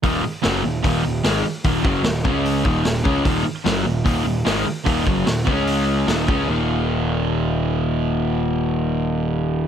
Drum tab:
HH |o-o-o-o-|o-o-o-o-|o-o-o-o-|o-o-o-o-|
SD |--o---o-|--o---o-|--o---o-|--o---o-|
BD |o---o---|oo-o-o-o|o---o---|oo-o---o|

HH |--------|--------|
SD |--------|--------|
BD |--------|--------|